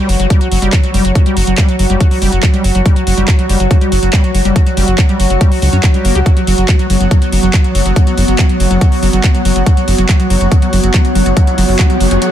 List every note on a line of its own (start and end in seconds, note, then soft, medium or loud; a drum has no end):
0.00 12.32 F#3 medium
0.00 6.28 F#4 medium
0.00 12.32 F#4 medium
0.00 12.32 C#5 medium
0.00 12.32 F#5 medium
0.09 0.16 F#1 medium
0.09 0.16 F#3 medium
0.09 open hi-hat loud
0.20 0.26 F#1 medium
0.20 0.27 F#3 medium
0.20 closed hi-hat medium
0.30 0.40 G3 loud
0.30 kick loud
0.30 closed hi-hat loud
0.41 0.48 F#3 medium
0.41 closed hi-hat medium
0.52 0.58 F#1 medium
0.52 0.59 F#3 medium
0.52 open hi-hat loud
0.62 0.69 F#1 medium
0.62 0.72 G3 loud
0.62 closed hi-hat medium
0.73 0.80 F#3 medium
0.73 kick loud
0.73 clap loud
0.73 closed hi-hat loud
0.83 0.91 F#3 medium
0.83 closed hi-hat medium
0.94 1.01 F#1 medium
0.94 1.04 G3 loud
0.94 open hi-hat loud
1.05 1.12 F#1 medium
1.05 1.12 F#3 medium
1.05 closed hi-hat medium
1.15 1.23 F#3 medium
1.15 kick loud
1.15 closed hi-hat medium
1.26 1.36 G3 loud
1.26 closed hi-hat medium
1.37 1.43 F#1 loud
1.37 1.44 F#3 medium
1.37 open hi-hat loud
1.47 1.54 F#1 medium
1.47 1.55 F#3 medium
1.47 closed hi-hat medium
1.58 1.68 G3 loud
1.58 kick loud
1.58 clap loud
1.58 closed hi-hat medium
1.69 1.76 F#3 medium
1.69 closed hi-hat medium
1.79 1.86 F#1 loud
1.79 1.87 F#3 medium
1.79 open hi-hat loud
1.90 1.97 F#1 medium
1.90 2.00 G3 loud
1.90 closed hi-hat medium
2.00 2.08 F#3 medium
2.00 kick loud
2.00 closed hi-hat loud
2.11 2.19 F#3 medium
2.11 open hi-hat medium
2.22 2.29 F#1 medium
2.22 2.32 G3 loud
2.22 open hi-hat loud
2.32 2.39 F#1 medium
2.32 2.40 F#3 medium
2.32 closed hi-hat medium
2.43 2.50 F#3 medium
2.43 kick loud
2.43 clap loud
2.43 closed hi-hat medium
2.54 2.64 G3 loud
2.54 closed hi-hat medium
2.64 2.71 F#1 medium
2.64 2.72 F#3 medium
2.64 open hi-hat loud
2.75 2.82 F#1 medium
2.75 2.82 F#3 medium
2.75 closed hi-hat medium
2.86 2.96 G3 loud
2.86 kick loud
2.86 closed hi-hat medium
2.96 3.04 F#3 medium
2.96 closed hi-hat medium
3.07 3.14 F#1 medium
3.07 3.14 F#3 medium
3.07 open hi-hat loud
3.18 3.24 F#1 medium
3.18 3.28 G3 loud
3.18 closed hi-hat medium
3.28 3.36 F#3 medium
3.28 kick loud
3.28 clap loud
3.28 closed hi-hat medium
3.39 3.46 F#3 medium
3.39 closed hi-hat medium
3.49 3.56 F#1 medium
3.49 3.60 G3 loud
3.49 open hi-hat loud
3.60 3.67 F#1 medium
3.60 3.67 F#3 medium
3.60 closed hi-hat medium
3.71 3.78 F#3 medium
3.71 kick loud
3.71 closed hi-hat medium
3.81 3.91 G3 loud
3.81 closed hi-hat medium
3.92 3.99 F#1 medium
3.92 3.99 F#3 medium
3.92 open hi-hat loud
4.03 4.09 F#1 medium
4.03 4.10 F#3 medium
4.03 closed hi-hat medium
4.13 4.23 G3 loud
4.13 kick loud
4.13 clap loud
4.13 closed hi-hat medium
4.24 4.31 F#3 medium
4.24 closed hi-hat soft
4.35 4.41 F#1 medium
4.35 4.42 F#3 medium
4.35 open hi-hat loud
4.45 4.52 F#1 medium
4.45 4.55 G3 loud
4.45 closed hi-hat medium
4.56 4.63 F#3 medium
4.56 kick loud
4.56 closed hi-hat medium
4.66 4.74 F#3 medium
4.66 closed hi-hat medium
4.77 4.84 F#1 loud
4.77 4.87 G3 loud
4.77 open hi-hat loud
4.88 4.95 F#1 medium
4.88 4.95 F#3 medium
4.88 closed hi-hat medium
4.98 5.06 F#3 medium
4.98 kick loud
4.98 clap loud
4.98 closed hi-hat medium
5.09 5.19 G3 loud
5.09 closed hi-hat soft
5.20 5.26 F#1 medium
5.20 5.27 F#3 medium
5.20 open hi-hat loud
5.30 5.37 F#1 medium
5.30 5.38 F#3 medium
5.30 closed hi-hat soft
5.41 5.51 G3 loud
5.41 kick loud
5.41 closed hi-hat medium
5.52 5.59 F#3 medium
5.52 open hi-hat medium
5.62 5.69 C#2 loud
5.62 5.70 F#3 medium
5.62 open hi-hat loud
5.73 5.80 F#2 medium
5.73 5.77 C#4 medium
5.73 closed hi-hat soft
5.83 5.88 F#3 medium
5.83 kick loud
5.83 clap loud
5.83 closed hi-hat medium
5.94 6.04 G3 medium
5.94 closed hi-hat medium
6.05 6.12 F#1 medium
6.05 6.15 A#3 medium
6.05 open hi-hat loud
6.15 6.22 C#2 medium
6.15 6.20 G4 loud
6.15 closed hi-hat medium
6.26 6.33 F#3 medium
6.26 12.32 B3 medium
6.26 kick loud
6.26 closed hi-hat medium
6.37 6.44 F#3 medium
6.37 closed hi-hat medium
6.47 6.54 F#1 loud
6.47 6.55 F#3 loud
6.47 open hi-hat loud
6.58 6.65 F#1 medium
6.58 6.65 F#3 medium
6.58 closed hi-hat medium
6.69 kick loud
6.69 clap loud
6.69 closed hi-hat medium
6.79 6.87 F#3 loud
6.79 closed hi-hat medium
6.90 6.97 F#1 medium
6.90 6.97 F#3 medium
6.90 open hi-hat loud
7.00 7.07 F#1 medium
7.00 7.08 F#3 medium
7.00 closed hi-hat soft
7.11 7.19 F#3 loud
7.11 kick loud
7.11 closed hi-hat medium
7.22 7.29 F#3 medium
7.22 closed hi-hat medium
7.32 7.39 F#1 medium
7.32 7.40 F#3 medium
7.32 open hi-hat loud
7.43 7.50 F#1 medium
7.43 7.50 F#3 loud
7.43 closed hi-hat soft
7.54 7.61 F#3 medium
7.54 kick loud
7.54 clap loud
7.54 closed hi-hat medium
7.64 7.72 F#3 medium
7.64 closed hi-hat medium
7.75 7.82 F#1 medium
7.75 7.82 F#3 loud
7.75 open hi-hat loud
7.86 7.92 F#1 medium
7.86 7.93 F#3 medium
7.86 closed hi-hat medium
7.96 8.04 F#3 medium
7.96 kick loud
7.96 closed hi-hat medium
8.07 8.14 F#3 loud
8.07 closed hi-hat medium
8.18 8.24 F#1 medium
8.18 8.25 F#3 medium
8.18 open hi-hat loud
8.28 8.35 F#1 medium
8.28 8.36 F#3 medium
8.28 closed hi-hat medium
8.39 8.46 F#3 loud
8.39 kick loud
8.39 clap loud
8.39 closed hi-hat medium
8.49 8.57 F#3 medium
8.49 closed hi-hat medium
8.60 8.67 F#1 loud
8.60 8.67 F#3 medium
8.60 open hi-hat loud
8.71 8.77 F#1 medium
8.71 8.78 F#3 loud
8.71 closed hi-hat medium
8.81 8.89 F#3 medium
8.81 kick loud
8.81 closed hi-hat medium
8.92 8.99 F#3 medium
8.92 open hi-hat medium
9.03 9.09 F#1 medium
9.03 9.10 F#3 loud
9.03 open hi-hat loud
9.13 9.20 F#1 medium
9.13 9.21 F#3 medium
9.13 closed hi-hat medium
9.24 kick loud
9.24 clap loud
9.24 closed hi-hat medium
9.35 9.42 F#3 loud
9.35 closed hi-hat medium
9.45 9.52 F#1 medium
9.45 9.53 F#3 medium
9.45 open hi-hat loud
9.56 9.63 F#1 medium
9.56 9.63 F#3 medium
9.56 closed hi-hat medium
9.66 9.74 F#3 loud
9.66 kick loud
9.66 closed hi-hat loud
9.66 riser medium
9.77 9.85 F#3 medium
9.77 closed hi-hat medium
9.88 9.95 F#1 medium
9.88 9.95 F#3 medium
9.88 open hi-hat loud
9.98 10.05 F#1 medium
9.98 10.06 F#3 loud
9.98 closed hi-hat medium
10.09 10.16 F#3 medium
10.09 kick loud
10.09 clap loud
10.09 closed hi-hat medium
10.20 10.27 F#3 medium
10.20 closed hi-hat medium
10.30 10.37 F#1 medium
10.30 10.38 F#3 loud
10.30 open hi-hat loud
10.41 10.48 F#1 medium
10.41 10.48 F#3 medium
10.41 closed hi-hat medium
10.52 10.59 F#3 medium
10.52 kick loud
10.52 closed hi-hat loud
10.62 10.70 F#3 loud
10.62 closed hi-hat medium
10.73 10.80 F#1 medium
10.73 10.80 F#3 medium
10.73 open hi-hat loud
10.83 10.90 F#1 medium
10.83 10.91 F#3 medium
10.83 closed hi-hat medium
10.94 11.02 F#3 loud
10.94 kick loud
10.94 clap loud
10.94 closed hi-hat medium
11.05 11.12 F#3 medium
11.05 closed hi-hat medium
11.15 11.22 F#1 medium
11.15 11.23 F#3 medium
11.15 open hi-hat loud
11.26 11.33 F#1 medium
11.26 11.33 F#3 loud
11.26 closed hi-hat medium
11.37 11.44 F#3 medium
11.37 kick loud
11.37 closed hi-hat loud
11.47 11.55 F#3 medium
11.47 closed hi-hat medium
11.58 11.65 F#1 loud
11.58 11.65 F#3 loud
11.58 open hi-hat loud
11.69 11.75 F#1 medium
11.69 11.76 F#3 medium
11.69 open hi-hat medium
11.79 11.87 F#3 medium
11.79 kick loud
11.79 clap loud
11.79 closed hi-hat medium
11.90 11.97 F#3 loud
11.90 closed hi-hat medium
12.00 12.07 F#1 medium
12.00 12.08 F#3 medium
12.00 open hi-hat loud
12.11 12.18 F#1 medium
12.11 12.19 F#3 medium
12.11 closed hi-hat medium
12.22 12.29 F#3 loud
12.22 closed hi-hat loud